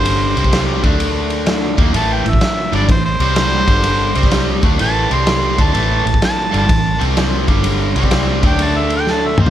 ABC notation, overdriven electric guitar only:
X:1
M:4/4
L:1/8
Q:"Swing" 1/4=126
K:Am
V:1 name="Overdriven electric guitar" clef=bass
[G,,D,G,] [C,G,C]2 [D,A,D]4 [^D,_B,^D] | [A,,E,A,] [A,,E,] z [G,,D,G,] [A,,E,] [C,G,C]2 [G,,D,G,]- | [G,,D,G,] [C,G,C]2 [D,A,D] [A,,E,A,] [C,G,C]2 [D,A,D] | [A,,E,A,] [A,,E,] z [G,,D,G,] [A,,E,] [C,G,C]2 [G,,D,G,]- |
[G,,D,G,] [C,G,C]2 [D,A,D]4 [^D,_B,^D] |]